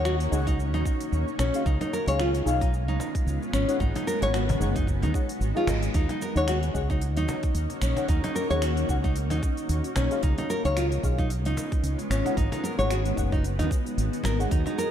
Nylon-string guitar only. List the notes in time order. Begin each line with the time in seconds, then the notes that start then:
0.05 F#4
0.47 D#4
0.74 D#4
1.39 C#4
1.66 D#4
1.81 D#4
1.93 A#4
2.08 C#5
2.20 F4
2.61 D#4
2.88 D#4
3.53 C#4
3.80 D#4
3.96 D#4
4.07 A#4
4.23 C#5
4.34 F#4
4.76 D#4
5.03 D#4
5.57 F4
5.69 D#5
5.95 D#4
6.10 D#4
6.22 A#4
6.37 C#5
6.48 F#4
6.90 D#4
7.17 D#4
7.82 C#4
8.09 D#4
8.24 D#4
8.36 A#4
8.51 C#5
8.62 F#4
9.04 D#4
9.31 D#4
9.97 C#4
10.23 D#4
10.38 D#4
10.50 A#4
10.65 C#5
10.77 F4
11.19 D#4
11.46 D#4
12.11 C#4
12.37 D#4
12.52 D#4
12.64 A#4
12.79 C#5
12.90 F#4
13.33 D#4
13.59 D#4
14.25 A#4
14.51 D#4
14.67 D#4
14.78 A#4